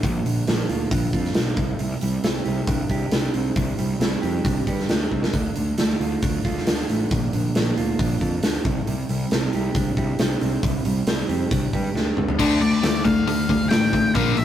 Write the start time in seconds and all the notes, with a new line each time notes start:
Already playing: D4
0.03 A#1 A#2, kick, open hi-hat
0.25 A#1 D3, open hi-hat
0.47 A#1 A#3, snare, open hi-hat
0.69 D2 F4, open hi-hat
0.91 A#1 D4, kick, open hi-hat
1.13 F2 F4, kick, open hi-hat
1.25 snare
1.35 B1 D4, snare, open hi-hat
1.57 C2 C3, kick, open hi-hat
1.79 C2 C3, open hi-hat
2.01 C2 G3, open hi-hat
2.23 C2 C4, snare, open hi-hat
2.45 C2 G4, open hi-hat
2.67 C2 D4, kick, open hi-hat
2.89 C2 G4, kick, open hi-hat
3.11 C2 D4, snare, open hi-hat
3.34 C2 C4, open hi-hat
3.56 C2 C3, kick, open hi-hat
3.79 C2 G3, open hi-hat
4.00 C2 C4, snare, open hi-hat
4.22 F2 G4, open hi-hat
4.44 C2 D4, kick, open hi-hat
4.67 G2 G4, kick, open hi-hat
4.79 snare
4.89 D2 D4, snare, open hi-hat
5.12 C2 C4, kick
5.23 snare
5.33 D2 D3, kick, open hi-hat
5.56 D2 D3, open hi-hat
5.78 D2 A3, snare, open hi-hat
6.00 D2 F4, open hi-hat
6.22 D2 D4, kick, open hi-hat
6.45 D2 F4, kick, open hi-hat
6.57 snare
6.67 D2 D4, snare, open hi-hat
6.89 A1 A3, open hi-hat
7.11 A#1 A#2, kick, open hi-hat
7.33 A#1 D3, open hi-hat
7.55 A#1 A#3, snare, open hi-hat
7.77 D2 F4, open hi-hat
7.99 A#1 D4, kick, open hi-hat
8.21 F2 F4, kick, open hi-hat
8.43 D2 D4, snare, open hi-hat
8.65 C2 C3, kick, open hi-hat
8.87 C2 C3, open hi-hat
9.09 C2 G3, open hi-hat
9.31 C2 C4, snare, open hi-hat
9.53 C2 G4, open hi-hat
9.75 C2 D4, kick, open hi-hat
9.97 C2 G4, kick, open hi-hat
10.19 C2 D4, snare, open hi-hat
10.41 C2 C4, open hi-hat
10.63 C2 C3, kick, open hi-hat
10.85 C2 G3, open hi-hat
11.07 C2 C4, snare, open hi-hat
11.29 F2 G4, open hi-hat
11.51 C2 D4, kick, open hi-hat
11.73 G2 G4, kick, open hi-hat
11.95 D2 D4, snare
12.17 C#2 C4, mid tom
12.29 floor tom
12.39 D2 D3 A3 D4, kick, crash
12.61 D3 A3 D5, open hi-hat
12.83 D2 D3 A3, snare, open hi-hat
12.96 snare
13.05 D2 D3 A3 F5, kick, open hi-hat
13.27 D2 D3 A3, open hi-hat
13.49 D2 D3 A3, kick, open hi-hat
13.69 A1 D3 A3 G5, snare, open hi-hat
13.93 D3 A3, kick, open hi-hat
14.15 A#1 A#2 D3 F3 A#3 F5, kick, open hi-hat
14.37 A#1 A#2 D3 F3 E5, open hi-hat